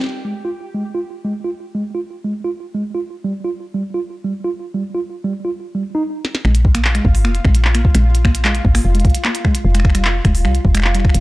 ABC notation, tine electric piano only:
X:1
M:4/4
L:1/16
Q:1/4=150
K:Fm
V:1 name="Tine electric piano" clef=bass
z2 A, z F z2 A, z F z2 A, z F z | z A, z F z2 A, z F z2 A, z F z2 | G, z F z2 G, z F z2 G, z F z2 G, | z F z2 G, z F z2 G, z E z4 |
A, z2 B, z A, z2 B, z A, z2 B, z A, | z2 B, z A, z2 B, z A, z2 B, z A, z | z A, z G, z2 A, z G, z2 A, z G, z2 |]